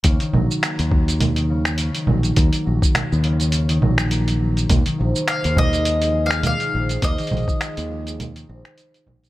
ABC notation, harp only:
X:1
M:4/4
L:1/16
Q:"Swing 16ths" 1/4=103
K:Ebdor
V:1 name="Harp" clef=bass
D, E, G,2 B, z G,3 E, D, E, D, E, G,2 | B, z G,3 E, D, E, D, E, G,2 B, z G,2 | z E, C, E, C, E, F,2 A, z F,3 E, C, E, | C, E, F,2 A, z F,3 E, C C, E F, F, z |]